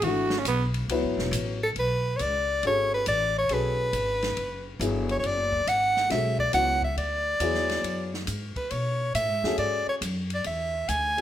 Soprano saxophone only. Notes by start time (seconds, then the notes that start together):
1.63 A4
1.79 B4
2.16 C#5
2.21 D5
2.67 C#5
2.94 B4
3.08 D5
3.38 C#5
3.53 B4
5.12 C#5
5.19 C#5
5.26 D5
5.68 F#5
6.11 E5
6.40 D5
6.54 F#5
6.84 E5
6.98 D5
8.57 B4
8.71 C#5
9.15 E5
9.59 D5
9.89 C#5
10.34 D5
10.47 E5
10.89 G#5